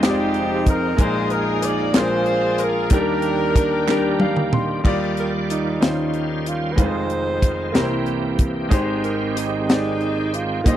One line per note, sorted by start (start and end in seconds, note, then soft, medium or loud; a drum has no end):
0.00 0.94 F1 medium
0.00 0.94 F2 medium
0.00 0.94 F3 medium
0.00 0.95 G#3 medium
0.00 0.96 G#3 medium
0.00 0.95 C4 medium
0.00 0.94 C4 medium
0.00 0.95 D#4 medium
0.00 0.98 D#4 medium
0.00 0.94 D#4 medium
0.00 0.02 F4 medium
0.00 0.93 F4 medium
0.00 0.62 G4 medium
0.00 0.71 G4 medium
0.00 0.04 C5 medium
0.00 snare loud
0.00 clap medium
0.00 closed hi-hat medium
0.04 1.00 C5 soft
0.10 0.97 D5 medium
0.34 closed hi-hat soft
0.66 0.99 A#4 medium
0.66 1.03 A#4 medium
0.66 kick medium
0.66 closed hi-hat medium
0.96 1.91 A#1 medium
0.96 1.91 A#2 medium
0.96 1.93 F3 medium
0.96 1.88 G#3 medium
0.96 1.94 A#3 medium
0.96 1.89 D#4 medium
0.96 1.95 D#4 medium
0.96 1.91 D#4 medium
0.96 1.89 F4 medium
0.96 1.05 G4 medium
0.96 1.91 G#4 medium
0.96 1.31 C5 loud
0.96 kick loud
0.96 closed hi-hat medium
1.01 1.91 A#4 medium
1.01 1.34 C5 loud
1.05 1.94 G#4 medium
1.30 1.63 A#4 medium
1.30 1.67 A#4 medium
1.30 closed hi-hat medium
1.62 1.95 D5 medium
1.62 2.01 D5 medium
1.62 closed hi-hat medium
1.93 2.87 A#1 medium
1.93 2.87 A#2 medium
1.93 2.91 F3 medium
1.93 2.85 G#3 medium
1.93 2.91 A#3 medium
1.93 2.86 D4 medium
1.93 2.91 D4 medium
1.93 2.86 F4 medium
1.93 2.91 G#4 medium
1.93 2.60 C5 loud
1.93 snare loud
1.93 clap medium
1.93 closed hi-hat medium
1.97 2.88 F4 medium
1.97 2.88 G#4 medium
1.97 2.87 A#4 medium
1.97 2.66 C5 medium
2.26 closed hi-hat soft
2.58 2.90 A#4 medium
2.58 closed hi-hat medium
2.64 2.94 A#4 medium
2.90 4.81 D#2 medium
2.90 4.81 D#3 medium
2.90 3.82 G3 medium
2.90 4.81 A#3 medium
2.90 4.48 D4 medium
2.90 3.83 D4 medium
2.90 4.81 D4 medium
2.90 4.48 G4 medium
2.90 4.81 G4 medium
2.90 3.83 G4 medium
2.90 4.48 A#4 loud
2.90 kick loud
2.90 closed hi-hat loud
2.94 3.84 A#4 medium
2.94 4.51 A#4 loud
3.22 closed hi-hat medium
3.56 kick medium
3.56 closed hi-hat medium
3.87 4.79 G3 medium
3.87 4.79 D4 medium
3.87 4.80 G4 medium
3.87 4.80 A#4 medium
3.87 snare medium
3.87 clap medium
4.20 4.50 F5 medium
4.20 high tom medium
4.36 mid tom medium
4.53 4.83 C6 medium
4.53 mid tom medium
4.84 5.77 D#2 medium
4.84 5.80 D#3 medium
4.84 5.78 D#3 medium
4.84 5.75 G3 medium
4.84 5.79 G3 medium
4.84 5.76 D#4 medium
4.84 5.80 F4 medium
4.84 5.77 F4 medium
4.84 5.81 D5 medium
4.84 5.77 D5 medium
4.84 kick medium
4.84 crash medium
5.17 5.33 A#4 medium
5.17 closed hi-hat soft
5.50 6.49 D#4 medium
5.50 closed hi-hat medium
5.80 6.74 D#2 soft
5.80 6.76 D#3 medium
5.80 6.74 D#3 soft
5.80 6.72 G3 medium
5.80 6.77 G3 soft
5.80 6.78 C#4 medium
5.80 6.73 C#4 soft
5.80 6.76 F4 medium
5.80 6.73 F4 soft
5.80 6.77 C5 medium
5.80 6.74 C5 medium
5.80 snare loud
5.80 closed hi-hat medium
6.14 closed hi-hat soft
6.46 6.74 F4 medium
6.46 closed hi-hat medium
6.72 7.68 G#3 medium
6.72 6.82 B4 medium
6.77 7.71 F1 medium
6.77 7.70 F2 medium
6.77 7.74 D#3 medium
6.77 6.84 G3 soft
6.77 7.72 C4 medium
6.77 7.69 D#4 medium
6.77 7.75 F4 medium
6.77 7.70 F4 medium
6.77 6.85 B4 medium
6.77 8.08 C5 loud
6.77 kick medium
6.77 closed hi-hat loud
6.83 7.77 G#3 soft
6.83 7.73 C5 medium
7.10 closed hi-hat soft
7.42 kick medium
7.42 closed hi-hat medium
7.72 8.67 C2 medium
7.72 8.67 C3 medium
7.72 8.71 E3 medium
7.72 8.65 A#3 medium
7.72 8.72 A#3 medium
7.72 8.69 C4 medium
7.72 8.66 E4 medium
7.72 8.69 G4 medium
7.72 8.66 G4 medium
7.72 7.82 A#4 medium
7.72 snare loud
7.72 closed hi-hat medium
7.82 8.70 C5 medium
8.06 closed hi-hat soft
8.39 kick medium
8.39 closed hi-hat medium
8.69 10.61 G#1 medium
8.69 10.61 G#2 medium
8.69 10.61 D#3 medium
8.69 9.62 G#3 medium
8.69 10.61 G#3 medium
8.69 10.61 C4 medium
8.69 9.63 D#4 medium
8.69 10.61 G4 medium
8.69 9.63 G4 medium
8.69 kick loud
8.69 closed hi-hat medium
8.73 9.64 C5 medium
9.04 9.34 A#4 medium
9.04 closed hi-hat soft
9.37 10.36 D#4 medium
9.37 closed hi-hat medium
9.67 10.60 G#3 medium
9.67 10.60 D#4 soft
9.67 10.61 G4 medium
9.67 10.62 D5 medium
9.67 snare loud
9.67 closed hi-hat medium
10.01 closed hi-hat soft
10.34 10.70 F4 medium
10.34 closed hi-hat medium
10.64 10.77 A#1 medium
10.64 10.77 A#2 medium
10.64 10.77 D#3 soft
10.64 10.77 G3 medium
10.64 10.77 A#3 medium
10.64 10.77 D#4 medium
10.64 10.73 F4 medium
10.64 10.77 G4 medium
10.64 10.77 C5 loud
10.64 10.77 D#5 medium
10.64 kick medium
10.64 closed hi-hat medium
10.73 10.77 G4 medium